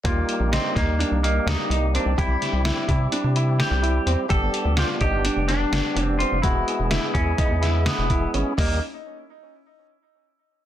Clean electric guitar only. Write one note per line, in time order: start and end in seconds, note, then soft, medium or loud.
0.05 0.49 A#3 medium
0.53 0.75 C4 medium
0.75 1.20 A#3 medium
1.24 1.48 A#3 medium
1.48 1.95 D#4 medium
1.96 2.17 D4 medium
2.19 3.64 E4 medium
3.60 4.30 G4 medium
4.30 4.74 A4 loud
4.79 4.85 G4 loud
5.01 5.50 G4 medium
5.48 6.03 D4 medium
6.03 6.18 C4 medium
6.19 6.42 F4 medium
6.42 7.13 E4 medium
7.14 7.86 C#4 medium
7.86 8.30 B3 medium
8.59 8.80 A#3 medium